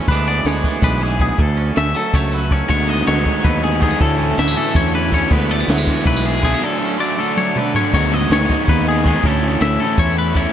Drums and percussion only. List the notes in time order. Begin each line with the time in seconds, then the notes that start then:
0.08 kick, ride
0.27 ride
0.45 snare, ride
0.64 kick, snare, ride
0.82 kick, ride
1.01 ride
1.20 kick, snare, ride
1.39 kick, ride
1.57 ride
1.76 snare, ride
1.95 snare, ride
2.13 kick, ride
2.33 snare, ride
2.51 kick, snare, ride
2.70 kick, crash
2.88 ride
3.07 snare, ride
3.26 kick, ride
3.44 kick, ride
3.63 snare, ride
3.82 kick, ride
4.01 kick, ride
4.19 ride
4.38 snare, ride
4.57 ride
4.75 kick, snare, ride
4.94 snare, ride
5.12 kick, ride
5.31 kick, ride
5.49 ride
5.69 snare, ride
5.87 kick, ride
6.06 kick, ride
6.25 ride
6.43 kick, snare, ride
7.37 high tom
7.56 mid tom
7.75 floor tom
7.93 kick, crash
8.12 snare, ride
8.31 snare, ride
8.50 kick, snare, ride
8.68 kick, snare, ride
8.87 ride
9.05 kick, snare, ride
9.23 kick, ride
9.42 snare, ride
9.61 snare, ride
9.79 snare, ride
9.98 kick, ride
10.17 ride
10.35 kick, ride